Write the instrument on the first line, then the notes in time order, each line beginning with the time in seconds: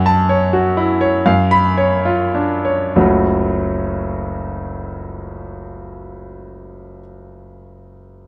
grand piano
Already playing: F#2 F#5
0.06 A5
0.29 C#5
0.53 F#4
0.77 E4
1.01 C#5
1.26 F#2 F5
1.51 B5
1.78 C#5
2.05 F4
2.34 D4
2.65 C#5
2.96 F#1 C#2 F#3 A3 C#4 F#4